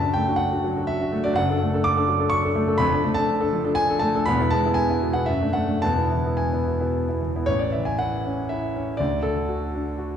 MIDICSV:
0, 0, Header, 1, 2, 480
1, 0, Start_track
1, 0, Key_signature, 3, "major"
1, 0, Tempo, 487805
1, 1347, Time_signature, 3, 2, 24, 8
1, 5188, Tempo, 551471
1, 7108, Tempo, 501253
1, 9684, End_track
2, 0, Start_track
2, 0, Title_t, "Grand piano"
2, 0, Program_c, 0, 0
2, 0, Note_on_c, 0, 81, 105
2, 21, Note_on_c, 0, 62, 58
2, 22, Note_on_c, 0, 66, 60
2, 66, Control_c, 0, 64, 127
2, 133, Note_off_c, 0, 62, 0
2, 133, Note_on_c, 0, 79, 103
2, 134, Note_off_c, 0, 66, 0
2, 141, Note_off_c, 0, 81, 0
2, 153, Note_on_c, 0, 57, 59
2, 272, Note_on_c, 0, 62, 60
2, 273, Note_on_c, 0, 66, 62
2, 344, Note_off_c, 0, 57, 0
2, 357, Note_on_c, 0, 78, 102
2, 382, Note_off_c, 0, 79, 0
2, 486, Note_off_c, 0, 62, 0
2, 488, Note_off_c, 0, 66, 0
2, 501, Note_on_c, 0, 62, 56
2, 515, Note_on_c, 0, 66, 66
2, 613, Note_off_c, 0, 62, 0
2, 620, Note_off_c, 0, 66, 0
2, 630, Note_on_c, 0, 54, 68
2, 751, Note_on_c, 0, 62, 56
2, 752, Note_on_c, 0, 66, 66
2, 821, Note_off_c, 0, 54, 0
2, 851, Note_off_c, 0, 78, 0
2, 857, Note_on_c, 0, 76, 97
2, 965, Note_off_c, 0, 62, 0
2, 966, Note_off_c, 0, 66, 0
2, 990, Note_on_c, 0, 62, 55
2, 998, Note_on_c, 0, 66, 65
2, 1097, Note_off_c, 0, 62, 0
2, 1101, Note_off_c, 0, 66, 0
2, 1106, Note_on_c, 0, 57, 68
2, 1217, Note_on_c, 0, 74, 105
2, 1222, Note_off_c, 0, 76, 0
2, 1236, Note_on_c, 0, 62, 62
2, 1237, Note_on_c, 0, 66, 68
2, 1299, Note_off_c, 0, 57, 0
2, 1313, Note_on_c, 0, 42, 91
2, 1334, Note_on_c, 0, 78, 117
2, 1340, Note_off_c, 0, 62, 0
2, 1341, Note_off_c, 0, 66, 0
2, 1342, Note_off_c, 0, 74, 0
2, 1347, Note_on_c, 0, 30, 83
2, 1363, Control_c, 0, 64, 0
2, 1446, Note_off_c, 0, 42, 0
2, 1463, Note_off_c, 0, 30, 0
2, 1481, Note_on_c, 0, 69, 73
2, 1483, Note_on_c, 0, 62, 59
2, 1502, Control_c, 0, 64, 127
2, 1582, Note_off_c, 0, 69, 0
2, 1583, Note_off_c, 0, 62, 0
2, 1602, Note_on_c, 0, 57, 66
2, 1713, Note_on_c, 0, 62, 61
2, 1714, Note_on_c, 0, 69, 74
2, 1784, Note_off_c, 0, 57, 0
2, 1811, Note_on_c, 0, 86, 127
2, 1816, Note_off_c, 0, 78, 0
2, 1919, Note_off_c, 0, 62, 0
2, 1922, Note_off_c, 0, 69, 0
2, 1934, Note_on_c, 0, 62, 66
2, 1938, Note_on_c, 0, 69, 68
2, 2042, Note_off_c, 0, 62, 0
2, 2044, Note_off_c, 0, 69, 0
2, 2052, Note_on_c, 0, 54, 66
2, 2161, Note_on_c, 0, 62, 64
2, 2165, Note_on_c, 0, 69, 68
2, 2241, Note_off_c, 0, 54, 0
2, 2259, Note_on_c, 0, 85, 125
2, 2285, Note_off_c, 0, 86, 0
2, 2378, Note_off_c, 0, 62, 0
2, 2380, Note_off_c, 0, 69, 0
2, 2404, Note_on_c, 0, 62, 66
2, 2407, Note_on_c, 0, 69, 73
2, 2514, Note_off_c, 0, 62, 0
2, 2515, Note_off_c, 0, 69, 0
2, 2515, Note_on_c, 0, 57, 79
2, 2637, Note_on_c, 0, 62, 66
2, 2641, Note_on_c, 0, 69, 72
2, 2715, Note_off_c, 0, 57, 0
2, 2731, Note_on_c, 0, 83, 127
2, 2741, Note_on_c, 0, 29, 86
2, 2751, Note_off_c, 0, 62, 0
2, 2753, Note_off_c, 0, 69, 0
2, 2754, Note_off_c, 0, 85, 0
2, 2754, Note_on_c, 0, 41, 99
2, 2789, Control_c, 0, 64, 0
2, 2872, Note_off_c, 0, 29, 0
2, 2879, Note_off_c, 0, 41, 0
2, 2882, Note_on_c, 0, 62, 67
2, 2886, Note_on_c, 0, 69, 68
2, 2951, Control_c, 0, 64, 127
2, 2992, Note_on_c, 0, 57, 74
2, 2994, Note_off_c, 0, 62, 0
2, 2997, Note_off_c, 0, 69, 0
2, 3094, Note_on_c, 0, 81, 125
2, 3111, Note_off_c, 0, 83, 0
2, 3115, Note_on_c, 0, 62, 70
2, 3121, Note_on_c, 0, 69, 68
2, 3191, Note_off_c, 0, 57, 0
2, 3334, Note_off_c, 0, 62, 0
2, 3337, Note_off_c, 0, 69, 0
2, 3349, Note_on_c, 0, 62, 69
2, 3352, Note_on_c, 0, 69, 76
2, 3463, Note_off_c, 0, 62, 0
2, 3465, Note_off_c, 0, 69, 0
2, 3469, Note_on_c, 0, 53, 76
2, 3583, Note_on_c, 0, 62, 65
2, 3589, Note_on_c, 0, 69, 70
2, 3670, Note_off_c, 0, 53, 0
2, 3689, Note_on_c, 0, 80, 126
2, 3708, Note_off_c, 0, 81, 0
2, 3813, Note_off_c, 0, 62, 0
2, 3816, Note_off_c, 0, 69, 0
2, 3835, Note_on_c, 0, 62, 60
2, 3838, Note_on_c, 0, 69, 75
2, 3930, Note_on_c, 0, 81, 112
2, 3953, Note_off_c, 0, 62, 0
2, 3953, Note_on_c, 0, 57, 73
2, 3954, Note_off_c, 0, 69, 0
2, 3954, Note_off_c, 0, 80, 0
2, 4082, Note_on_c, 0, 62, 67
2, 4087, Note_on_c, 0, 69, 74
2, 4160, Note_off_c, 0, 57, 0
2, 4188, Note_on_c, 0, 83, 127
2, 4198, Note_off_c, 0, 81, 0
2, 4199, Note_off_c, 0, 62, 0
2, 4201, Note_off_c, 0, 69, 0
2, 4202, Note_on_c, 0, 28, 88
2, 4215, Note_on_c, 0, 40, 94
2, 4238, Control_c, 0, 64, 0
2, 4327, Note_off_c, 0, 28, 0
2, 4334, Note_off_c, 0, 40, 0
2, 4334, Note_on_c, 0, 59, 69
2, 4339, Note_on_c, 0, 64, 67
2, 4408, Control_c, 0, 64, 127
2, 4433, Note_on_c, 0, 81, 120
2, 4444, Note_off_c, 0, 59, 0
2, 4444, Note_off_c, 0, 83, 0
2, 4447, Note_off_c, 0, 64, 0
2, 4456, Note_on_c, 0, 56, 71
2, 4575, Note_on_c, 0, 59, 62
2, 4581, Note_on_c, 0, 64, 69
2, 4648, Note_off_c, 0, 56, 0
2, 4666, Note_on_c, 0, 80, 109
2, 4684, Note_off_c, 0, 81, 0
2, 4791, Note_off_c, 0, 59, 0
2, 4795, Note_off_c, 0, 64, 0
2, 4817, Note_on_c, 0, 59, 62
2, 4820, Note_on_c, 0, 64, 69
2, 4926, Note_off_c, 0, 59, 0
2, 4928, Note_off_c, 0, 64, 0
2, 4939, Note_on_c, 0, 47, 73
2, 5047, Note_off_c, 0, 80, 0
2, 5052, Note_on_c, 0, 78, 102
2, 5064, Note_on_c, 0, 59, 58
2, 5067, Note_on_c, 0, 64, 65
2, 5139, Note_off_c, 0, 47, 0
2, 5176, Note_on_c, 0, 76, 95
2, 5178, Note_off_c, 0, 59, 0
2, 5179, Note_off_c, 0, 64, 0
2, 5184, Note_off_c, 0, 78, 0
2, 5197, Note_on_c, 0, 42, 83
2, 5207, Control_c, 0, 64, 0
2, 5305, Note_off_c, 0, 42, 0
2, 5313, Note_on_c, 0, 57, 58
2, 5316, Note_on_c, 0, 62, 63
2, 5351, Control_c, 0, 64, 127
2, 5414, Note_on_c, 0, 78, 102
2, 5416, Note_off_c, 0, 57, 0
2, 5418, Note_off_c, 0, 62, 0
2, 5418, Note_off_c, 0, 76, 0
2, 5430, Note_on_c, 0, 57, 69
2, 5535, Note_off_c, 0, 57, 0
2, 5548, Note_on_c, 0, 57, 60
2, 5550, Note_on_c, 0, 62, 66
2, 5658, Note_off_c, 0, 57, 0
2, 5659, Note_off_c, 0, 62, 0
2, 5663, Note_off_c, 0, 78, 0
2, 5664, Note_on_c, 0, 81, 119
2, 5673, Note_on_c, 0, 28, 73
2, 5682, Note_on_c, 0, 40, 75
2, 5686, Control_c, 0, 64, 0
2, 5791, Note_off_c, 0, 28, 0
2, 5794, Note_on_c, 0, 59, 58
2, 5795, Note_off_c, 0, 40, 0
2, 5800, Note_on_c, 0, 64, 61
2, 5824, Control_c, 0, 64, 127
2, 5903, Note_off_c, 0, 59, 0
2, 5906, Note_off_c, 0, 64, 0
2, 5927, Note_on_c, 0, 52, 59
2, 6038, Note_on_c, 0, 59, 54
2, 6048, Note_on_c, 0, 64, 56
2, 6114, Note_off_c, 0, 52, 0
2, 6142, Note_on_c, 0, 80, 86
2, 6153, Note_off_c, 0, 81, 0
2, 6254, Note_off_c, 0, 59, 0
2, 6259, Note_off_c, 0, 64, 0
2, 6284, Note_on_c, 0, 64, 57
2, 6285, Note_on_c, 0, 59, 57
2, 6388, Note_off_c, 0, 64, 0
2, 6389, Note_off_c, 0, 59, 0
2, 6405, Note_on_c, 0, 47, 59
2, 6518, Note_on_c, 0, 59, 53
2, 6522, Note_on_c, 0, 64, 58
2, 6592, Note_off_c, 0, 47, 0
2, 6628, Note_off_c, 0, 80, 0
2, 6732, Note_off_c, 0, 59, 0
2, 6735, Note_off_c, 0, 64, 0
2, 6767, Note_on_c, 0, 59, 50
2, 6768, Note_on_c, 0, 64, 55
2, 6870, Note_off_c, 0, 59, 0
2, 6871, Note_off_c, 0, 64, 0
2, 6874, Note_on_c, 0, 52, 57
2, 7002, Note_on_c, 0, 59, 54
2, 7006, Note_on_c, 0, 64, 58
2, 7064, Note_off_c, 0, 52, 0
2, 7093, Note_on_c, 0, 73, 114
2, 7102, Note_off_c, 0, 59, 0
2, 7104, Note_off_c, 0, 64, 0
2, 7109, Note_on_c, 0, 33, 75
2, 7128, Control_c, 0, 64, 0
2, 7216, Note_on_c, 0, 74, 80
2, 7225, Note_off_c, 0, 73, 0
2, 7299, Control_c, 0, 64, 127
2, 7341, Note_on_c, 0, 76, 72
2, 7350, Note_off_c, 0, 74, 0
2, 7361, Note_on_c, 0, 52, 52
2, 7467, Note_on_c, 0, 80, 82
2, 7475, Note_off_c, 0, 76, 0
2, 7594, Note_on_c, 0, 78, 103
2, 7599, Note_off_c, 0, 80, 0
2, 7614, Note_on_c, 0, 64, 61
2, 7755, Note_off_c, 0, 52, 0
2, 7851, Note_on_c, 0, 61, 62
2, 7998, Note_off_c, 0, 64, 0
2, 8078, Note_on_c, 0, 76, 83
2, 8083, Note_off_c, 0, 78, 0
2, 8102, Note_on_c, 0, 64, 60
2, 8231, Note_off_c, 0, 61, 0
2, 8334, Note_on_c, 0, 61, 63
2, 8472, Note_off_c, 0, 64, 0
2, 8522, Note_off_c, 0, 33, 0
2, 8538, Note_on_c, 0, 74, 96
2, 8555, Note_off_c, 0, 76, 0
2, 8564, Note_on_c, 0, 38, 76
2, 8565, Note_off_c, 0, 61, 0
2, 8575, Control_c, 0, 64, 0
2, 8722, Control_c, 0, 64, 127
2, 8782, Note_on_c, 0, 69, 88
2, 8788, Note_off_c, 0, 74, 0
2, 8806, Note_on_c, 0, 50, 54
2, 9032, Note_on_c, 0, 66, 62
2, 9183, Note_off_c, 0, 50, 0
2, 9280, Note_on_c, 0, 62, 62
2, 9413, Note_off_c, 0, 66, 0
2, 9507, Note_on_c, 0, 66, 60
2, 9657, Note_off_c, 0, 62, 0
2, 9684, Note_off_c, 0, 38, 0
2, 9684, Note_off_c, 0, 66, 0
2, 9684, Note_off_c, 0, 69, 0
2, 9684, End_track
0, 0, End_of_file